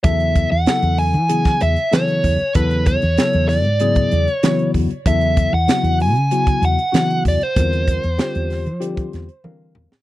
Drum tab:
HH |xxx-xxoxxxxxxxox|xxxxxxoxxxxxxxox|xxx-xxoxxxxxxxox|xxxxxxoxxxxx----|
SD |----o----o--o---|----o-o-----o---|----o-------o---|----o-o---o----o|
T1 |----------------|----------------|----------------|------------o---|
T2 |----------------|----------------|----------------|--------------o-|
BD |o-o------o----o-|o-o------o----o-|o-o------o----o-|o-o------o------|